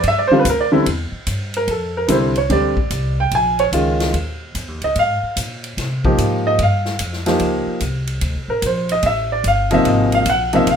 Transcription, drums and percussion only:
0.03 kick, ride
0.45 kick, hi-hat pedal, ride
0.86 kick, ride
1.27 kick, hi-hat pedal, ride
1.54 ride
1.68 kick, ride
2.08 kick, hi-hat pedal, ride
2.35 ride
2.50 kick, ride
2.77 kick
2.90 kick, hi-hat pedal, ride
3.31 kick, ride
3.59 ride
3.73 kick, hi-hat pedal, ride
4.00 snare, ride
4.14 kick, ride
4.55 kick, hi-hat pedal, ride
4.82 ride
4.95 kick, ride
5.37 kick, hi-hat pedal, ride
5.64 ride
5.78 kick, snare, ride
6.05 kick
6.18 kick, hi-hat pedal, ride
6.59 kick, ride
6.85 snare
6.99 kick, hi-hat pedal, ride
7.13 snare
7.26 snare, ride
7.39 kick, ride
7.80 kick, hi-hat pedal, ride
8.07 ride
8.21 kick, ride
8.62 kick, hi-hat pedal, ride
8.89 ride
9.03 kick, ride
9.44 kick, hi-hat pedal, ride
9.71 ride
9.85 kick, ride
10.12 ride
10.26 kick, hi-hat pedal, ride
10.53 ride
10.67 kick, ride

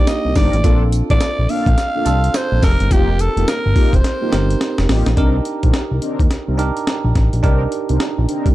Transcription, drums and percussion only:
0.07 snare, closed hi-hat, tambourine
0.35 kick, snare, open hi-hat, tambourine
0.53 closed hi-hat
0.64 kick, closed hi-hat, tambourine
0.92 closed hi-hat, tambourine
1.10 kick, closed hi-hat
1.21 snare, closed hi-hat, tambourine
1.49 open hi-hat
1.66 kick, closed hi-hat
1.78 snare, closed hi-hat, tambourine
2.06 closed hi-hat, tambourine
2.24 closed hi-hat
2.34 snare, closed hi-hat, tambourine
2.63 kick, snare, open hi-hat, tambourine
2.80 closed hi-hat
2.91 kick, closed hi-hat, tambourine
3.19 closed hi-hat, tambourine
3.37 closed hi-hat
3.48 snare, closed hi-hat, tambourine
3.76 kick, open hi-hat
3.93 kick, closed hi-hat
4.04 snare, closed hi-hat
4.33 snare, closed hi-hat
4.50 closed hi-hat
4.61 snare, closed hi-hat
4.78 snare
4.89 snare, open hi-hat
5.06 snare, closed hi-hat
5.17 kick, closed hi-hat
5.45 closed hi-hat
5.63 kick, closed hi-hat
5.74 snare, closed hi-hat
6.02 closed hi-hat
6.19 kick, closed hi-hat
6.31 snare, closed hi-hat
6.59 closed hi-hat
6.77 closed hi-hat
6.87 snare, closed hi-hat
7.15 kick, snare, closed hi-hat
7.33 closed hi-hat
7.44 kick, closed hi-hat
7.72 closed hi-hat
7.89 closed hi-hat
8.00 snare, closed hi-hat
8.29 closed hi-hat
8.46 kick, closed hi-hat

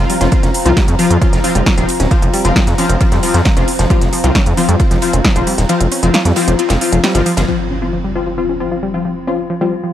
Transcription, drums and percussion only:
0.10 open hi-hat, ride
0.21 snare, closed hi-hat
0.32 kick, closed hi-hat, ride
0.43 snare, closed hi-hat
0.54 open hi-hat, ride
0.66 closed hi-hat
0.77 kick, snare, closed hi-hat, ride
0.88 closed hi-hat, ride
0.99 open hi-hat, ride
1.11 closed hi-hat
1.21 kick, closed hi-hat, ride
1.33 snare, closed hi-hat
1.44 open hi-hat, ride
1.55 closed hi-hat
1.66 kick, snare, closed hi-hat, ride
1.78 closed hi-hat
1.89 open hi-hat, ride
2.00 snare, closed hi-hat
2.11 kick, closed hi-hat, ride
2.22 closed hi-hat, ride
2.33 open hi-hat, ride
2.45 closed hi-hat
2.56 kick, snare, closed hi-hat, ride
2.67 snare, closed hi-hat
2.78 open hi-hat, ride
2.89 closed hi-hat, ride
3.01 kick, closed hi-hat, ride
3.12 snare, closed hi-hat
3.23 open hi-hat, ride
3.34 snare, closed hi-hat
3.45 kick, snare, closed hi-hat, ride
3.56 snare, closed hi-hat
3.68 open hi-hat, ride
3.79 snare, closed hi-hat
3.90 kick, closed hi-hat, ride
4.01 snare, closed hi-hat
4.13 open hi-hat, ride
4.24 closed hi-hat
4.35 kick, snare, closed hi-hat, ride
4.46 closed hi-hat, ride
4.57 open hi-hat, ride
4.69 closed hi-hat
4.80 kick, closed hi-hat, ride
4.91 snare, closed hi-hat
5.02 open hi-hat, ride
5.13 closed hi-hat
5.24 kick, snare, closed hi-hat, ride
5.36 closed hi-hat
5.47 open hi-hat, ride
5.58 snare, closed hi-hat
5.69 closed hi-hat, ride
5.81 closed hi-hat, ride
5.92 open hi-hat, ride
6.03 closed hi-hat
6.14 snare, closed hi-hat, ride
6.25 snare, closed hi-hat
6.36 snare, open hi-hat, ride
6.48 closed hi-hat, ride
6.59 closed hi-hat, ride
6.69 snare, closed hi-hat, ride
6.81 open hi-hat, ride
6.92 closed hi-hat, ride
7.04 snare, closed hi-hat, ride
7.15 snare, closed hi-hat
7.26 open hi-hat, ride
7.37 snare, closed hi-hat, ride

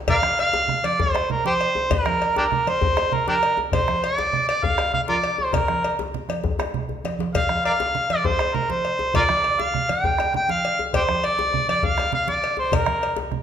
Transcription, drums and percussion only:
0.07 bombo low, cowbell, high conga, low conga, djembe bass
0.23 bombo rim, high conga
0.39 bombo rim, cowbell
0.53 bombo rim, djembe slap, djembe tone
0.68 bombo rim, low conga
0.84 cowbell, high conga
0.99 bombo low, djembe bass
1.15 bombo rim, cowbell, djembe tone
1.30 bombo rim, low conga
1.45 djembe slap, high conga
1.61 cowbell
1.75 djembe tone
1.90 bombo low, cowbell, high conga, djembe bass, low conga
2.06 bombo rim, high conga
2.22 cowbell
2.36 bombo rim, djembe slap, djembe tone
2.52 bombo rim, low conga
2.67 cowbell, high conga
2.81 bombo low, djembe bass
2.97 bombo rim, cowbell, djembe tone
3.12 bombo rim, low conga
3.28 djembe slap, high conga
3.43 cowbell
3.57 djembe tone
3.72 bombo low, cowbell, high conga, djembe bass, low conga
3.88 bombo rim, high conga
4.03 bombo rim, cowbell
4.18 bombo rim, djembe slap, djembe tone
4.33 bombo rim, low conga
4.49 cowbell
4.63 bombo low, djembe bass
4.78 bombo rim, cowbell, djembe tone
4.93 bombo rim, low conga
5.08 djembe slap, high conga
5.24 cowbell
5.38 djembe tone
5.53 bombo low, cowbell, high conga, djembe bass, low conga
5.68 bombo rim, djembe slap, high conga
5.83 bombo rim, cowbell, high conga
5.99 djembe slap, djembe tone, high conga
6.14 djembe slap, low conga
6.29 bombo rim, cowbell, djembe slap, high conga
6.44 bombo low, djembe bass
6.59 bombo rim, cowbell, djembe slap, djembe tone
6.74 high conga, low conga
6.89 low conga, djembe bass
7.04 cowbell, djembe slap, high conga
7.19 djembe slap, high conga
7.35 bombo low, cowbell, high conga, low conga, djembe bass
7.49 bombo rim, high conga
7.64 bombo rim, cowbell
7.80 bombo rim, djembe slap, djembe tone
7.95 bombo rim, low conga
8.10 cowbell, high conga
8.24 bombo low, djembe bass
8.39 bombo rim, cowbell, djembe tone
8.54 bombo rim, low conga
8.70 djembe slap, high conga
8.85 cowbell
8.99 djembe tone
9.14 bombo low, cowbell, high conga, djembe bass, low conga
9.29 bombo rim, high conga
9.44 bombo rim, cowbell
9.59 bombo rim, djembe slap, djembe tone
9.74 bombo rim, low conga
9.89 cowbell, high conga
10.03 bombo low, djembe bass
10.18 bombo rim, cowbell, djembe tone
10.34 bombo rim, low conga
10.49 djembe slap, high conga
10.65 cowbell
10.79 djembe tone
10.93 bombo low, cowbell, high conga, djembe bass, low conga
11.09 bombo rim, high conga
11.24 bombo rim, cowbell
11.38 bombo rim, djembe slap, djembe tone
11.53 bombo rim, low conga
11.69 cowbell, high conga
11.82 bombo low, djembe bass
11.98 bombo rim, cowbell, djembe tone
12.13 bombo rim, low conga
12.27 djembe slap, high conga
12.44 cowbell
12.57 djembe tone
12.72 bombo low, cowbell, djembe bass, low conga
12.86 bombo rim, high conga
13.01 bombo rim, cowbell
13.16 djembe slap, djembe tone
13.31 bombo rim, high conga, low conga

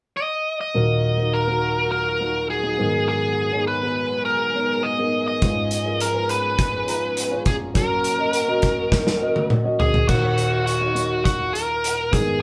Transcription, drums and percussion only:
5.42 kick, closed hi-hat
5.71 closed hi-hat
6.00 closed hi-hat
6.29 closed hi-hat
6.59 kick, closed hi-hat
6.88 closed hi-hat
7.17 closed hi-hat
7.46 kick, closed hi-hat
7.75 kick, closed hi-hat
8.04 closed hi-hat
8.33 closed hi-hat
8.62 kick, closed hi-hat
8.92 kick, snare
9.07 snare
9.36 high tom
9.50 mid tom
9.80 floor tom
9.94 floor tom
10.09 kick, crash
10.38 closed hi-hat
10.67 closed hi-hat
10.96 closed hi-hat
11.25 kick, closed hi-hat
11.55 closed hi-hat
11.84 closed hi-hat
12.13 kick, closed hi-hat

